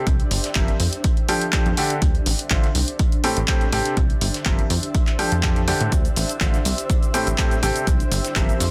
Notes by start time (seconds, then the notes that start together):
Already playing: D4 G4 C5 E5
0.07 C2, kick, closed hi-hat
0.20 closed hi-hat
0.31 G1, closed hi-hat, open hi-hat
0.44 snare, closed hi-hat
0.55 G1 F3 C4 G4 A#4 E5, kick, snare, clap, closed hi-hat
0.68 closed hi-hat
0.80 F2, closed hi-hat, open hi-hat
0.93 closed hi-hat
1.04 kick, closed hi-hat
1.17 closed hi-hat
1.29 F3 D4 G4 A4 G5, closed hi-hat, open hi-hat
1.41 closed hi-hat
1.52 F3 D4 G4 A4 G5, kick, snare, clap, closed hi-hat
1.66 F2, closed hi-hat
1.77 D3 D4 G4 A4 G5, snare, closed hi-hat, open hi-hat
1.90 closed hi-hat
2.02 D2 D4, kick, closed hi-hat
2.15 closed hi-hat
2.26 A1, closed hi-hat, open hi-hat
2.39 closed hi-hat
2.50 A1 D3 D4 F4 C5 E5, kick, snare, clap, closed hi-hat
2.64 snare, closed hi-hat
2.75 C2, closed hi-hat, open hi-hat
2.88 closed hi-hat
2.99 kick, closed hi-hat
3.12 closed hi-hat
3.24 A2 C4 G4 A4 E5 G5, closed hi-hat, open hi-hat
3.33 A1 G4, closed hi-hat
3.44 C5, clap
3.48 A2 C4 G4 A4 G5, kick, snare, closed hi-hat
3.61 closed hi-hat
3.72 A1 C3 C4 G4 A4 G5, snare, closed hi-hat, open hi-hat
3.85 snare, closed hi-hat
3.97 C2, kick, closed hi-hat
4.10 closed hi-hat
4.21 G1, closed hi-hat, open hi-hat
4.34 snare, closed hi-hat
4.45 G1 F3 C4 G4 A#4 E5, kick, snare, clap, closed hi-hat
4.59 closed hi-hat
4.70 F2, closed hi-hat, open hi-hat
4.83 closed hi-hat
4.95 kick, closed hi-hat
5.07 clap, closed hi-hat
5.19 F3 D4 G4 A4 G5, closed hi-hat, open hi-hat
5.32 F2, closed hi-hat
5.43 F3 D4 G4 A4 G5, kick, snare, clap, closed hi-hat
5.56 closed hi-hat
5.68 D3 D4 G4 A4 G5, snare, closed hi-hat, open hi-hat
5.81 A2, closed hi-hat
5.92 D2, kick, closed hi-hat, cabasa
6.05 closed hi-hat, cabasa
6.16 A1, closed hi-hat, open hi-hat, cabasa
6.29 closed hi-hat, cabasa
6.40 A1 D3 D4 F4 C5 E5, kick, snare, clap, closed hi-hat, cabasa
6.54 snare, closed hi-hat, cabasa
6.65 C2, closed hi-hat, open hi-hat, cabasa
6.78 closed hi-hat, cabasa
6.90 kick, closed hi-hat, cabasa
7.03 closed hi-hat, cabasa
7.14 A2 C4 G4 A4 G5, closed hi-hat, open hi-hat, cabasa
7.27 A1, closed hi-hat, cabasa
7.38 A2 C4 G4 A4 G5, kick, snare, clap, closed hi-hat, cabasa
7.51 closed hi-hat, cabasa
7.63 A1 C3 C4 G4 A4 G5, closed hi-hat, open hi-hat, cabasa
7.76 closed hi-hat, cabasa
7.87 C2, kick, closed hi-hat, cabasa
8.00 closed hi-hat, cabasa
8.12 G1, closed hi-hat, open hi-hat, cabasa
8.25 snare, closed hi-hat, cabasa
8.36 G1 F3 C4 G4 A#4 E5, kick, snare, clap, closed hi-hat, cabasa
8.49 closed hi-hat, cabasa
8.60 F2, closed hi-hat, open hi-hat, cabasa